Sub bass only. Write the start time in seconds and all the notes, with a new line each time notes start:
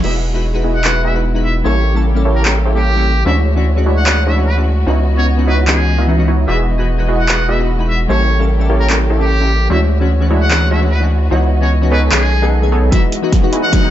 0.04 E1
1.65 A1
3.26 D2
4.87 C#2
6.48 E1
8.09 A1
9.70 D2
11.31 C#2
12.12 B1